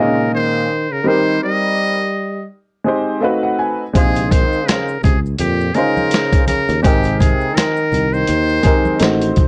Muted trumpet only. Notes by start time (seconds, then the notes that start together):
0.00 A#4
0.35 C5
0.93 A#4
1.08 C5
1.44 D#5
3.97 G#4
4.32 C5
4.68 A#4
5.04 G#4
5.39 G4
5.75 A#4
6.48 A#4
6.82 G4
7.20 G#4
7.55 A#4
8.13 C5